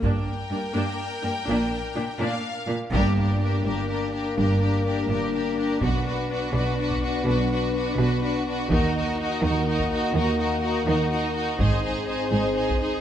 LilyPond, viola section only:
\new Staff \with { instrumentName = "Viola section" } { \time 6/8 \key g \minor \tempo 4. = 83 <bes d'>8 r8 <bes d'>8 <bes d'>8 r8 <bes d'>8 | <bes d'>8 r8 <bes d'>8 <bes d'>8 r8 <bes d'>8 | \key ees \major d'8 d'8 d'8 d'8 d'8 d'8 | d'8 d'8 d'8 d'8 d'8 d'8 |
d'8 d'8 d'8 d'8 d'8 d'8 | d'8 d'8 d'8 d'8 d'8 d'8 | ees'8 ees'8 ees'8 ees'8 ees'8 ees'8 | ees'8 ees'8 ees'8 ees'8 ees'8 ees'8 |
ees'8 ees'8 ees'8 ees'8 ees'8 ees'8 | }